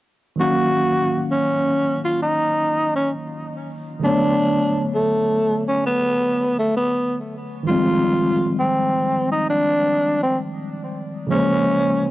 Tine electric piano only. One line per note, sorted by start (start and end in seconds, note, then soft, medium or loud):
0.36 3.97 D#3 medium
0.36 3.98 F#3 medium
0.36 3.99 A#3 medium
0.41 3.99 C#4 medium
0.41 4.00 F5 medium
4.00 7.60 D3 medium
4.00 7.61 F#3 medium
4.00 7.62 A3 medium
4.05 7.63 B3 soft
4.05 7.64 C#5 medium
7.63 11.24 D#3 medium
7.63 11.25 F3 medium
7.63 11.26 G3 medium
7.69 11.27 G#3 medium
7.69 11.28 C4 medium
11.27 12.11 C#3 medium
11.27 12.11 F3 medium
11.27 12.11 G#3 medium
11.32 12.11 A#3 medium
11.32 12.11 C5 medium